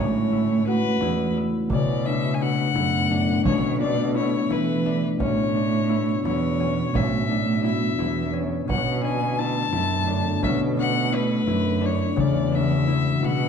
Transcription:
0.00 0.97 A2 loud
0.00 1.69 C#3 medium
0.00 1.69 A3 medium
0.00 2.13 C#4 medium
0.00 0.32 E4 medium
0.00 1.68 E4 medium
0.00 0.67 F#4 medium
0.00 1.20 G#4 medium
0.00 0.66 C#5 medium
0.32 1.01 E4 medium
0.32 frame drum soft
0.66 3.11 F#4 medium
0.66 1.33 B4 loud
0.66 frame drum soft
1.01 1.34 E2 medium
1.01 1.37 E4 medium
1.01 frame drum soft
1.37 2.40 E4 medium
1.70 2.71 B2 medium
1.70 8.65 B2 medium
1.70 5.25 C#3 medium
1.70 5.17 A3 medium
1.70 5.17 B3 medium
1.70 2.07 D5 medium
1.70 frame drum medium
2.06 3.10 D4 medium
2.06 2.35 E5 medium
2.34 2.42 G#5 medium
2.41 2.74 E4 medium
2.41 3.45 F#5 loud
2.75 3.42 F#2 medium
2.75 4.14 E4 medium
2.75 frame drum soft
3.10 3.52 D4 medium
3.10 frame drum soft
3.45 4.46 B2 medium
3.45 3.86 C#4 medium
3.45 3.78 C#5 medium
3.45 frame drum medium
3.80 4.85 D4 medium
3.80 4.13 D5 medium
4.15 4.50 E4 medium
4.15 4.53 C#5 medium
4.49 5.15 E3 medium
4.49 5.89 E4 medium
4.49 5.03 B4 medium
4.49 frame drum soft
4.85 5.26 D4 medium
4.85 frame drum soft
5.19 6.20 A2 loud
5.19 8.65 B3 medium
5.19 5.61 C#4 medium
5.19 8.65 F#4 medium
5.19 6.21 C#5 medium
5.19 frame drum medium
5.55 6.66 D4 medium
5.89 6.25 E4 medium
6.24 6.90 E2 medium
6.24 7.63 E4 medium
6.24 6.97 C#5 medium
6.24 frame drum soft
6.60 6.93 C#4 medium
6.60 frame drum soft
6.94 7.95 A2 medium
6.94 7.36 C#4 medium
6.94 7.64 E5 medium
6.94 frame drum medium
7.30 8.39 D4 medium
7.64 7.98 E4 medium
7.64 8.30 E5 medium
7.98 8.64 E2 medium
7.98 9.38 E4 medium
7.98 frame drum soft
8.33 8.67 C#4 medium
8.67 9.69 B2 medium
8.67 12.14 D3 medium
8.67 12.14 A3 medium
8.67 12.14 B3 medium
8.67 9.09 C#4 medium
8.67 9.02 F#5 medium
8.67 frame drum medium
9.03 10.06 D4 medium
9.03 9.41 G#5 medium
9.39 9.72 E4 medium
9.39 10.43 A5 loud
9.73 10.39 F#2 medium
9.73 11.11 E4 medium
9.73 frame drum soft
10.07 10.49 D4 medium
10.07 frame drum soft
10.43 11.44 B2 medium
10.43 10.83 C#4 medium
10.43 10.59 E5 medium
10.43 frame drum medium
10.77 11.81 D4 medium
10.77 11.16 F#5 loud
11.12 11.47 E4 medium
11.12 11.87 B4 medium
11.47 12.14 F#2 medium
11.47 12.87 E4 medium
11.47 frame drum soft
11.81 12.22 D4 medium
11.81 frame drum soft
11.85 12.21 C#5 medium
12.16 13.19 E2 loud
12.16 13.49 C#3 medium
12.16 13.49 E3 medium
12.16 13.49 G#3 medium
12.16 13.49 F#4 medium
12.16 12.56 D5 medium
12.16 frame drum soft
12.52 13.49 D4 medium
12.52 13.26 E5 medium
12.87 13.22 E4 medium
13.22 13.49 B2 medium
13.22 13.49 E4 medium
13.22 13.49 F#5 loud
13.22 frame drum soft

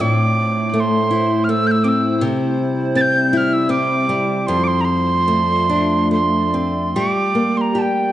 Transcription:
0.00 2.21 A2 medium
0.00 0.73 A3 medium
0.00 2.19 A3 medium
0.00 1.84 C4 soft
0.00 4.44 E4 medium
0.00 4.44 C5 medium
0.00 0.69 D6 medium
0.69 0.76 D6 medium
0.74 1.48 A3 medium
0.74 0.81 D6 medium
0.80 1.46 C6 medium
1.11 3.33 E4 medium
1.44 1.51 F6 medium
1.49 2.30 A3 medium
1.49 1.68 E6 medium
1.67 1.72 G6 medium
1.71 1.85 E6 medium
1.84 2.95 C4 medium
1.84 1.89 D6 medium
1.88 2.23 E6 medium
2.21 4.47 C3 medium
2.21 4.46 G3 medium
2.95 3.69 C4 medium
2.95 3.02 A6 medium
3.01 3.32 G6 loud
3.32 4.56 E4 medium
3.32 3.38 G6 medium
3.37 3.55 F6 loud
3.53 3.72 E6 loud
3.69 5.27 C4 medium
3.69 4.48 D6 loud
4.09 4.56 G3 medium
4.47 6.95 F2 medium
4.47 6.93 A3 medium
4.47 6.93 F4 medium
4.47 6.93 D5 medium
4.47 4.65 C6 loud
4.64 4.82 C6 loud
4.64 4.68 D6 medium
4.81 4.85 A#5 medium
4.81 6.11 C6 loud
5.28 6.10 A3 medium
5.69 6.96 D4 medium
6.11 7.03 A3 soft
6.11 6.97 C6 medium
6.54 7.03 C4 soft
6.93 8.12 G3 medium
6.93 8.12 A#3 medium
6.93 8.12 G4 medium
6.93 7.74 G4 soft
6.93 8.12 D5 medium
6.93 7.59 D6 medium
7.35 8.12 A#3 soft
7.57 7.80 A#5 medium
7.57 7.62 C6 medium
7.75 8.12 G4 medium
7.75 7.83 A5 medium
7.82 8.12 G5 medium

